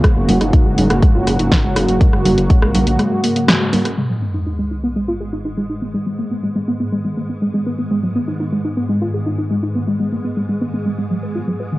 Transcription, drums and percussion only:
0, 0, Header, 1, 2, 480
1, 0, Start_track
1, 0, Key_signature, 5, "minor"
1, 0, Tempo, 491803
1, 39, Time_signature, 4, 2, 24, 8
1, 11504, End_track
2, 0, Start_track
2, 0, Title_t, "Drums"
2, 39, Note_on_c, 9, 36, 106
2, 40, Note_on_c, 9, 37, 80
2, 40, Note_on_c, 9, 42, 34
2, 137, Note_off_c, 9, 36, 0
2, 138, Note_off_c, 9, 37, 0
2, 138, Note_off_c, 9, 42, 0
2, 280, Note_on_c, 9, 46, 96
2, 280, Note_on_c, 9, 64, 96
2, 378, Note_off_c, 9, 46, 0
2, 378, Note_off_c, 9, 64, 0
2, 400, Note_on_c, 9, 37, 53
2, 400, Note_on_c, 9, 42, 46
2, 497, Note_off_c, 9, 37, 0
2, 497, Note_off_c, 9, 42, 0
2, 519, Note_on_c, 9, 36, 110
2, 520, Note_on_c, 9, 42, 35
2, 617, Note_off_c, 9, 36, 0
2, 617, Note_off_c, 9, 42, 0
2, 760, Note_on_c, 9, 46, 98
2, 760, Note_on_c, 9, 64, 80
2, 857, Note_off_c, 9, 46, 0
2, 857, Note_off_c, 9, 64, 0
2, 880, Note_on_c, 9, 37, 82
2, 880, Note_on_c, 9, 42, 47
2, 977, Note_off_c, 9, 37, 0
2, 977, Note_off_c, 9, 42, 0
2, 999, Note_on_c, 9, 36, 111
2, 1000, Note_on_c, 9, 42, 33
2, 1097, Note_off_c, 9, 36, 0
2, 1097, Note_off_c, 9, 42, 0
2, 1239, Note_on_c, 9, 37, 52
2, 1239, Note_on_c, 9, 46, 98
2, 1337, Note_off_c, 9, 37, 0
2, 1337, Note_off_c, 9, 46, 0
2, 1360, Note_on_c, 9, 42, 46
2, 1457, Note_off_c, 9, 42, 0
2, 1479, Note_on_c, 9, 36, 111
2, 1480, Note_on_c, 9, 38, 113
2, 1480, Note_on_c, 9, 46, 56
2, 1577, Note_off_c, 9, 36, 0
2, 1577, Note_off_c, 9, 38, 0
2, 1577, Note_off_c, 9, 46, 0
2, 1719, Note_on_c, 9, 37, 82
2, 1719, Note_on_c, 9, 46, 102
2, 1817, Note_off_c, 9, 37, 0
2, 1817, Note_off_c, 9, 46, 0
2, 1839, Note_on_c, 9, 42, 46
2, 1937, Note_off_c, 9, 42, 0
2, 1959, Note_on_c, 9, 36, 112
2, 1959, Note_on_c, 9, 42, 35
2, 2057, Note_off_c, 9, 36, 0
2, 2057, Note_off_c, 9, 42, 0
2, 2079, Note_on_c, 9, 37, 53
2, 2177, Note_off_c, 9, 37, 0
2, 2199, Note_on_c, 9, 46, 99
2, 2199, Note_on_c, 9, 64, 94
2, 2297, Note_off_c, 9, 46, 0
2, 2297, Note_off_c, 9, 64, 0
2, 2319, Note_on_c, 9, 42, 46
2, 2417, Note_off_c, 9, 42, 0
2, 2439, Note_on_c, 9, 36, 112
2, 2439, Note_on_c, 9, 42, 35
2, 2537, Note_off_c, 9, 36, 0
2, 2537, Note_off_c, 9, 42, 0
2, 2559, Note_on_c, 9, 37, 76
2, 2657, Note_off_c, 9, 37, 0
2, 2679, Note_on_c, 9, 46, 102
2, 2679, Note_on_c, 9, 64, 82
2, 2777, Note_off_c, 9, 46, 0
2, 2777, Note_off_c, 9, 64, 0
2, 2799, Note_on_c, 9, 42, 47
2, 2897, Note_off_c, 9, 42, 0
2, 2919, Note_on_c, 9, 37, 50
2, 2919, Note_on_c, 9, 42, 33
2, 3017, Note_off_c, 9, 37, 0
2, 3017, Note_off_c, 9, 42, 0
2, 3159, Note_on_c, 9, 46, 100
2, 3257, Note_off_c, 9, 46, 0
2, 3280, Note_on_c, 9, 42, 47
2, 3377, Note_off_c, 9, 42, 0
2, 3400, Note_on_c, 9, 37, 76
2, 3400, Note_on_c, 9, 38, 117
2, 3400, Note_on_c, 9, 42, 34
2, 3497, Note_off_c, 9, 37, 0
2, 3497, Note_off_c, 9, 38, 0
2, 3497, Note_off_c, 9, 42, 0
2, 3639, Note_on_c, 9, 46, 103
2, 3639, Note_on_c, 9, 64, 82
2, 3737, Note_off_c, 9, 46, 0
2, 3737, Note_off_c, 9, 64, 0
2, 3760, Note_on_c, 9, 37, 53
2, 3760, Note_on_c, 9, 42, 47
2, 3857, Note_off_c, 9, 37, 0
2, 3857, Note_off_c, 9, 42, 0
2, 11504, End_track
0, 0, End_of_file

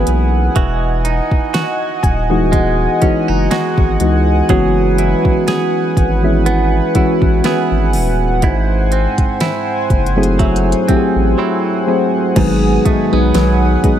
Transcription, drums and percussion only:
0, 0, Header, 1, 2, 480
1, 0, Start_track
1, 0, Tempo, 983607
1, 273, Time_signature, 4, 2, 24, 8
1, 6829, End_track
2, 0, Start_track
2, 0, Title_t, "Drums"
2, 33, Note_on_c, 9, 42, 69
2, 82, Note_off_c, 9, 42, 0
2, 272, Note_on_c, 9, 36, 118
2, 272, Note_on_c, 9, 42, 67
2, 320, Note_off_c, 9, 42, 0
2, 321, Note_off_c, 9, 36, 0
2, 512, Note_on_c, 9, 42, 69
2, 561, Note_off_c, 9, 42, 0
2, 641, Note_on_c, 9, 36, 85
2, 690, Note_off_c, 9, 36, 0
2, 752, Note_on_c, 9, 42, 73
2, 754, Note_on_c, 9, 38, 97
2, 801, Note_off_c, 9, 42, 0
2, 803, Note_off_c, 9, 38, 0
2, 992, Note_on_c, 9, 36, 99
2, 994, Note_on_c, 9, 42, 63
2, 1041, Note_off_c, 9, 36, 0
2, 1043, Note_off_c, 9, 42, 0
2, 1234, Note_on_c, 9, 36, 91
2, 1234, Note_on_c, 9, 42, 68
2, 1282, Note_off_c, 9, 42, 0
2, 1283, Note_off_c, 9, 36, 0
2, 1472, Note_on_c, 9, 42, 66
2, 1474, Note_on_c, 9, 36, 93
2, 1521, Note_off_c, 9, 42, 0
2, 1523, Note_off_c, 9, 36, 0
2, 1713, Note_on_c, 9, 42, 62
2, 1714, Note_on_c, 9, 38, 104
2, 1762, Note_off_c, 9, 42, 0
2, 1763, Note_off_c, 9, 38, 0
2, 1843, Note_on_c, 9, 36, 105
2, 1892, Note_off_c, 9, 36, 0
2, 1952, Note_on_c, 9, 42, 72
2, 2000, Note_off_c, 9, 42, 0
2, 2192, Note_on_c, 9, 42, 65
2, 2193, Note_on_c, 9, 36, 118
2, 2241, Note_off_c, 9, 42, 0
2, 2242, Note_off_c, 9, 36, 0
2, 2432, Note_on_c, 9, 42, 66
2, 2481, Note_off_c, 9, 42, 0
2, 2562, Note_on_c, 9, 36, 88
2, 2610, Note_off_c, 9, 36, 0
2, 2672, Note_on_c, 9, 42, 70
2, 2674, Note_on_c, 9, 38, 101
2, 2721, Note_off_c, 9, 42, 0
2, 2723, Note_off_c, 9, 38, 0
2, 2912, Note_on_c, 9, 36, 96
2, 2914, Note_on_c, 9, 42, 59
2, 2961, Note_off_c, 9, 36, 0
2, 2963, Note_off_c, 9, 42, 0
2, 3154, Note_on_c, 9, 42, 66
2, 3202, Note_off_c, 9, 42, 0
2, 3391, Note_on_c, 9, 42, 71
2, 3393, Note_on_c, 9, 36, 90
2, 3440, Note_off_c, 9, 42, 0
2, 3442, Note_off_c, 9, 36, 0
2, 3522, Note_on_c, 9, 36, 93
2, 3571, Note_off_c, 9, 36, 0
2, 3631, Note_on_c, 9, 42, 59
2, 3632, Note_on_c, 9, 38, 116
2, 3680, Note_off_c, 9, 42, 0
2, 3681, Note_off_c, 9, 38, 0
2, 3871, Note_on_c, 9, 46, 76
2, 3920, Note_off_c, 9, 46, 0
2, 4110, Note_on_c, 9, 42, 72
2, 4111, Note_on_c, 9, 36, 122
2, 4159, Note_off_c, 9, 42, 0
2, 4160, Note_off_c, 9, 36, 0
2, 4351, Note_on_c, 9, 42, 54
2, 4400, Note_off_c, 9, 42, 0
2, 4480, Note_on_c, 9, 42, 63
2, 4481, Note_on_c, 9, 36, 82
2, 4529, Note_off_c, 9, 36, 0
2, 4529, Note_off_c, 9, 42, 0
2, 4589, Note_on_c, 9, 42, 70
2, 4591, Note_on_c, 9, 38, 102
2, 4638, Note_off_c, 9, 42, 0
2, 4640, Note_off_c, 9, 38, 0
2, 4832, Note_on_c, 9, 36, 97
2, 4832, Note_on_c, 9, 42, 37
2, 4880, Note_off_c, 9, 36, 0
2, 4881, Note_off_c, 9, 42, 0
2, 4911, Note_on_c, 9, 42, 43
2, 4960, Note_off_c, 9, 42, 0
2, 4993, Note_on_c, 9, 42, 51
2, 5042, Note_off_c, 9, 42, 0
2, 5072, Note_on_c, 9, 42, 55
2, 5073, Note_on_c, 9, 36, 94
2, 5121, Note_off_c, 9, 42, 0
2, 5122, Note_off_c, 9, 36, 0
2, 5153, Note_on_c, 9, 42, 59
2, 5202, Note_off_c, 9, 42, 0
2, 5233, Note_on_c, 9, 42, 64
2, 5281, Note_off_c, 9, 42, 0
2, 5312, Note_on_c, 9, 42, 67
2, 5314, Note_on_c, 9, 36, 94
2, 5361, Note_off_c, 9, 42, 0
2, 5363, Note_off_c, 9, 36, 0
2, 6032, Note_on_c, 9, 42, 68
2, 6033, Note_on_c, 9, 36, 122
2, 6033, Note_on_c, 9, 49, 99
2, 6081, Note_off_c, 9, 42, 0
2, 6081, Note_off_c, 9, 49, 0
2, 6082, Note_off_c, 9, 36, 0
2, 6273, Note_on_c, 9, 42, 71
2, 6274, Note_on_c, 9, 36, 96
2, 6322, Note_off_c, 9, 36, 0
2, 6322, Note_off_c, 9, 42, 0
2, 6512, Note_on_c, 9, 42, 70
2, 6514, Note_on_c, 9, 38, 106
2, 6561, Note_off_c, 9, 42, 0
2, 6563, Note_off_c, 9, 38, 0
2, 6753, Note_on_c, 9, 36, 101
2, 6753, Note_on_c, 9, 42, 62
2, 6801, Note_off_c, 9, 36, 0
2, 6802, Note_off_c, 9, 42, 0
2, 6829, End_track
0, 0, End_of_file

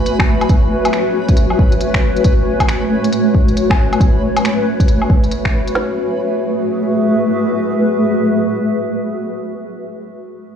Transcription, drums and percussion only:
0, 0, Header, 1, 2, 480
1, 0, Start_track
1, 0, Key_signature, 3, "minor"
1, 0, Tempo, 437956
1, 544, Time_signature, 4, 2, 24, 8
1, 11572, End_track
2, 0, Start_track
2, 0, Title_t, "Drums"
2, 67, Note_on_c, 9, 42, 47
2, 176, Note_off_c, 9, 42, 0
2, 213, Note_on_c, 9, 36, 92
2, 216, Note_on_c, 9, 26, 103
2, 216, Note_on_c, 9, 77, 60
2, 323, Note_off_c, 9, 36, 0
2, 326, Note_off_c, 9, 26, 0
2, 326, Note_off_c, 9, 77, 0
2, 453, Note_on_c, 9, 42, 27
2, 453, Note_on_c, 9, 77, 47
2, 542, Note_off_c, 9, 42, 0
2, 542, Note_on_c, 9, 42, 45
2, 543, Note_on_c, 9, 36, 104
2, 563, Note_off_c, 9, 77, 0
2, 652, Note_off_c, 9, 42, 0
2, 653, Note_off_c, 9, 36, 0
2, 934, Note_on_c, 9, 42, 51
2, 934, Note_on_c, 9, 77, 58
2, 1021, Note_off_c, 9, 42, 0
2, 1021, Note_on_c, 9, 26, 96
2, 1021, Note_on_c, 9, 42, 48
2, 1044, Note_off_c, 9, 77, 0
2, 1131, Note_off_c, 9, 26, 0
2, 1131, Note_off_c, 9, 42, 0
2, 1411, Note_on_c, 9, 42, 50
2, 1414, Note_on_c, 9, 36, 94
2, 1501, Note_off_c, 9, 42, 0
2, 1501, Note_on_c, 9, 42, 48
2, 1523, Note_off_c, 9, 36, 0
2, 1610, Note_off_c, 9, 42, 0
2, 1650, Note_on_c, 9, 77, 33
2, 1745, Note_on_c, 9, 36, 90
2, 1759, Note_off_c, 9, 77, 0
2, 1854, Note_off_c, 9, 36, 0
2, 1888, Note_on_c, 9, 42, 27
2, 1981, Note_off_c, 9, 42, 0
2, 1981, Note_on_c, 9, 42, 49
2, 2091, Note_off_c, 9, 42, 0
2, 2131, Note_on_c, 9, 26, 97
2, 2134, Note_on_c, 9, 36, 53
2, 2241, Note_off_c, 9, 26, 0
2, 2243, Note_off_c, 9, 36, 0
2, 2375, Note_on_c, 9, 42, 27
2, 2461, Note_off_c, 9, 42, 0
2, 2461, Note_on_c, 9, 42, 47
2, 2464, Note_on_c, 9, 36, 105
2, 2571, Note_off_c, 9, 42, 0
2, 2574, Note_off_c, 9, 36, 0
2, 2854, Note_on_c, 9, 36, 53
2, 2854, Note_on_c, 9, 42, 51
2, 2854, Note_on_c, 9, 77, 64
2, 2945, Note_off_c, 9, 42, 0
2, 2945, Note_on_c, 9, 26, 89
2, 2945, Note_on_c, 9, 42, 50
2, 2963, Note_off_c, 9, 36, 0
2, 2964, Note_off_c, 9, 77, 0
2, 3055, Note_off_c, 9, 26, 0
2, 3055, Note_off_c, 9, 42, 0
2, 3337, Note_on_c, 9, 42, 50
2, 3427, Note_off_c, 9, 42, 0
2, 3427, Note_on_c, 9, 42, 51
2, 3536, Note_off_c, 9, 42, 0
2, 3666, Note_on_c, 9, 36, 89
2, 3776, Note_off_c, 9, 36, 0
2, 3818, Note_on_c, 9, 42, 27
2, 3911, Note_off_c, 9, 42, 0
2, 3911, Note_on_c, 9, 42, 49
2, 4021, Note_off_c, 9, 42, 0
2, 4056, Note_on_c, 9, 36, 88
2, 4062, Note_on_c, 9, 26, 93
2, 4062, Note_on_c, 9, 77, 65
2, 4166, Note_off_c, 9, 36, 0
2, 4172, Note_off_c, 9, 26, 0
2, 4172, Note_off_c, 9, 77, 0
2, 4302, Note_on_c, 9, 42, 27
2, 4302, Note_on_c, 9, 77, 48
2, 4387, Note_on_c, 9, 36, 104
2, 4391, Note_off_c, 9, 42, 0
2, 4391, Note_on_c, 9, 42, 50
2, 4412, Note_off_c, 9, 77, 0
2, 4497, Note_off_c, 9, 36, 0
2, 4500, Note_off_c, 9, 42, 0
2, 4782, Note_on_c, 9, 42, 50
2, 4782, Note_on_c, 9, 77, 65
2, 4874, Note_off_c, 9, 42, 0
2, 4874, Note_on_c, 9, 26, 92
2, 4874, Note_on_c, 9, 42, 51
2, 4891, Note_off_c, 9, 77, 0
2, 4984, Note_off_c, 9, 26, 0
2, 4984, Note_off_c, 9, 42, 0
2, 5257, Note_on_c, 9, 36, 95
2, 5261, Note_on_c, 9, 42, 52
2, 5348, Note_off_c, 9, 42, 0
2, 5348, Note_on_c, 9, 42, 51
2, 5367, Note_off_c, 9, 36, 0
2, 5458, Note_off_c, 9, 42, 0
2, 5496, Note_on_c, 9, 77, 34
2, 5586, Note_on_c, 9, 36, 90
2, 5605, Note_off_c, 9, 77, 0
2, 5695, Note_off_c, 9, 36, 0
2, 5737, Note_on_c, 9, 42, 28
2, 5823, Note_off_c, 9, 42, 0
2, 5823, Note_on_c, 9, 42, 49
2, 5933, Note_off_c, 9, 42, 0
2, 5973, Note_on_c, 9, 26, 97
2, 5974, Note_on_c, 9, 36, 52
2, 6083, Note_off_c, 9, 26, 0
2, 6084, Note_off_c, 9, 36, 0
2, 6218, Note_on_c, 9, 42, 28
2, 6303, Note_on_c, 9, 38, 96
2, 6327, Note_off_c, 9, 42, 0
2, 6413, Note_off_c, 9, 38, 0
2, 11572, End_track
0, 0, End_of_file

